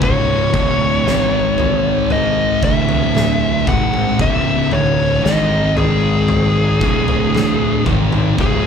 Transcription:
0.01 C#1 C#2 G#2 C#3 C#5, kick, floor tom
0.52 D1 D2 A2 D3, kick, floor tom
1.05 G#1 G#2 D#3 G#3, snare
1.58 floor tom
2.10 D#5, floor tom
2.63 D1 D2 A2 D3 E5, kick
2.89 floor tom
3.15 snare, mid tom
3.67 G#1 G#2 D#3 G#3 F#5, kick, floor tom
3.94 mid tom
4.19 C#1 C#2 G#2 C#3 E5, kick, floor tom
4.71 D1 D2 A2 D3 C#5, floor tom
5.24 G#1 G#2 D#3 G#3 D#5, snare
5.77 G#4, floor tom
6.28 floor tom
6.81 D1 D2 A2 D3, kick
7.08 floor tom
7.35 snare, mid tom
7.85 G#1 G#2 D#3 G#3, kick, floor tom
8.12 mid tom
8.38 C#1 C#2 G#2 C#3 G#4, kick, floor tom

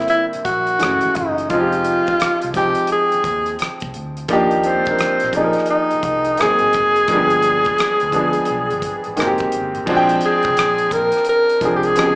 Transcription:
Already playing: D3 G3 A#3 C4 D4 E4
0.01 cross-stick
0.08 E4, closed hi-hat
0.33 muted fingered electric bass stroke, closed hi-hat
0.45 A#1 F#4, kick, closed hi-hat
0.67 closed hi-hat
0.79 F#1 E3 G#3 A3 C#4, cross-stick, closed hi-hat
0.83 F#4
1.01 G#1, closed hi-hat
1.15 F#1 D#4, kick, closed hi-hat
1.38 closed hi-hat
1.50 F1 F3 G#3 C4 D#4 F4, kick, closed hi-hat
1.54 F4
1.60 G4
1.72 closed hi-hat
1.84 closed hi-hat
2.07 muted fingered electric bass stroke, kick, closed hi-hat
2.20 muted fingered electric bass stroke, cross-stick, closed hi-hat
2.42 C2, closed hi-hat
2.54 F3 G#3 C4 D#4 G4, kick, closed hi-hat
2.58 G5
2.75 closed hi-hat
2.87 closed hi-hat
2.92 G#4
3.12 muted fingered electric bass stroke, closed hi-hat
3.24 D#2, kick, closed hi-hat
3.46 closed hi-hat
3.59 cross-stick, closed hi-hat
3.80 C2, kick, closed hi-hat
3.94 D2, closed hi-hat
4.17 closed hi-hat
4.28 D#2 F3 A#3 D4 D#4, kick, closed hi-hat
4.33 G4
4.51 closed hi-hat
4.63 C4, closed hi-hat
4.85 F3 A#3 D4 D#4, muted fingered electric bass stroke, kick, closed hi-hat
4.90 A#4
4.99 muted fingered electric bass stroke, cross-stick, closed hi-hat
5.20 closed hi-hat
5.24 A#1, cross-stick
5.33 F3 A#3 D#4 D5, kick, closed hi-hat
5.37 G#4
5.44 A#4
5.53 closed hi-hat
5.58 cross-stick
5.66 closed hi-hat
5.70 D#4
5.91 muted fingered electric bass stroke, closed hi-hat
6.03 C2, kick, closed hi-hat
6.25 closed hi-hat
6.37 G#1 F#3 A#3 C4 D#4 G#4, cross-stick, closed hi-hat
6.42 G#4
6.59 closed hi-hat
6.63 G#1
6.73 F1, kick, closed hi-hat
6.96 closed hi-hat
7.08 G1 F3 G#3 A#3 D4, kick, closed hi-hat
7.12 G3
7.17 B3
7.30 closed hi-hat
7.42 closed hi-hat
7.65 muted fingered electric bass stroke, kick, closed hi-hat
7.78 muted fingered electric bass stroke, cross-stick, closed hi-hat
8.00 D2, closed hi-hat
8.12 F3 G#3 B3 D4, kick, closed hi-hat
8.16 G#4
8.33 closed hi-hat
8.45 closed hi-hat
8.50 B1
8.70 G1, closed hi-hat
8.82 kick, closed hi-hat
9.04 G#1, closed hi-hat
9.16 D#3 G#3 A#3 C4 F#4, cross-stick, closed hi-hat
9.20 F1
9.27 G4
9.38 kick, closed hi-hat
9.52 G1, closed hi-hat
9.75 G#1, closed hi-hat
9.86 A#1 F3 G#3 C4 D4, kick, crash
9.90 F#4
9.97 G5
10.09 closed hi-hat
10.21 closed hi-hat
10.25 G#4
10.43 C2, kick, closed hi-hat
10.57 A#1, cross-stick, closed hi-hat
10.78 closed hi-hat
10.91 A#1 A#4, kick, closed hi-hat
11.12 closed hi-hat
11.17 cross-stick
11.25 closed hi-hat
11.29 A#4
11.49 closed hi-hat
11.61 C2 F3 G#3 C4 D4, kick, closed hi-hat
11.65 G#4
11.76 G4
11.83 G#4, closed hi-hat
11.95 C#2 F3 B3 C#4 D#4 G4, cross-stick, closed hi-hat
12.06 G#4

